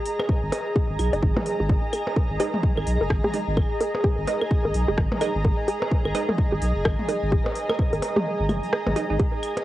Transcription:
Already playing: G#4 D#5 A#5
0.06 open hi-hat
0.19 percussion blips, claves
0.29 G#4, kick
0.43 G#1
0.52 A#4, open hi-hat, percussion blips
0.76 G#4, kick
0.90 G#1
0.99 B1 F#4, open hi-hat, claves
1.13 F#1 D#5, open hi-hat
1.23 G#1 D#4, kick
1.37 F#4, mid tom, percussion blips
1.46 open hi-hat
1.60 G#1 G#4
1.70 kick
1.93 A#4, open hi-hat, claves
2.07 percussion blips
2.16 A#4, kick
2.30 G#1
2.40 G#3 D#4 G#4 D#5, open hi-hat, percussion blips
2.54 mid tom
2.63 kick
2.77 G#1 A#4, claves
2.87 B1, open hi-hat
3.01 F#1 A#4
3.10 G#1, kick, cross-stick
3.24 G#4, mid tom
3.34 G#3 D#4 D#5, open hi-hat
3.48 G#1
3.57 A#4, kick, claves
3.80 A#4, open hi-hat
3.95 percussion blips
4.04 G#4, kick
4.18 G#1
4.27 G#3 D#4 D#5, open hi-hat, percussion blips
4.41 A#4, claves
4.51 kick
4.65 G#1 A#4
4.74 B1, open hi-hat
4.88 F#1 G#4
4.98 G#1, kick, cross-stick
5.12 mid tom, percussion blips
5.21 G#3 D#4 A#4 D#5, open hi-hat, claves
5.35 G#1
5.45 A#4, kick
5.68 G#4, open hi-hat
5.82 percussion blips
5.91 kick
6.05 G#1 A#4, claves
6.15 G#3 D#4 D#5, open hi-hat, percussion blips
6.29 A#4, mid tom
6.38 kick
6.52 G#1 G#4
6.62 B1, open hi-hat
6.76 F#1
6.85 G#1 A#4, kick, cross-stick, claves
6.99 mid tom
7.09 G#3 D#4 A#4 D#5, open hi-hat
7.23 G#1
7.32 G#4, kick
7.46 percussion blips
7.55 open hi-hat
7.70 A#4, percussion blips, claves
7.79 kick
7.93 G#1 A#4, open hi-hat
8.02 open hi-hat, percussion blips
8.16 G#4, mid tom
8.40 G#1
8.49 F#1 G#4, open hi-hat, mid tom, claves
8.63 open hi-hat
8.73 B4, cross-stick
8.87 G#1, mid tom, percussion blips
8.96 G#3 D#4 G#4 D#5, open hi-hat
9.10 G#1 G#3 D#4 D#5
9.20 G#4, kick, closed hi-hat
9.43 open hi-hat, claves
9.57 closed hi-hat, percussion blips

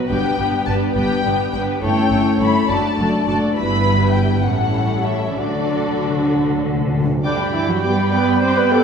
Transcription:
Already playing: B3
0.09 G1 G2 G3 B3 D4 G4 B4 G5
0.38 G1 G2 B3 D4 G4 B4
0.66 G1 G2 B3 D4 G4 B4 A5
0.94 G1 G2 B3 D4 G4 B4 G5
1.23 G1 G2 B3 D4 G4 B4
1.52 G1 G2 B3 D4 G4 B4 G5
1.82 G1 G2 A3 C#4 E4 A4 C#5 G5
2.11 G1 G2 A3 E4 A4 C#5
2.39 G1 G2 A3 E4 A4 C#5 B5
2.68 F#1 F#2 A3 D4 F#4 A4 D5 A5
2.98 F#1 F#2 A3 F#4 A4 D5
3.27 F#1 F#2 A3 F#4 A4 D5 A5
3.56 G1 G2 E3 G3 B3 E4 B4 B5
4.02 D4
4.15 G5
4.45 A1 A2 G3 C#4 E4 A4 F#5
5.06 E5
5.38 D2 D3 F#3 D4 F#4 A4 D5
5.46 D3
5.55 D3
5.62 D3
5.70 D3
5.79 D3
5.87 D3
5.94 D3
6.03 D3
6.10 D3
6.18 D3
6.25 D3
6.33 D3
6.41 D3
6.49 D3
6.57 D3
6.65 D3
6.73 D3
6.81 D3
6.88 D3
6.96 D3
7.04 D3
7.12 D3
7.24 G2 D3 G3 D4 D5 G5 B5 D6
7.39 D5 G5 B5
7.53 E3 E4 D5 G5 D6
7.68 F#3 F#4 D5 G5 B5
7.82 G3 B3 G4 D5 G5 D6
7.99 D5 G5 B5
8.13 B3 B4 D5 G5 D6
8.28 D5 G5 B5
8.42 C4 C5 D5 G5 D6
8.56 B3 B4 D5 G5 B5
8.70 G3 A3 B3 A4 D5 G5 D6

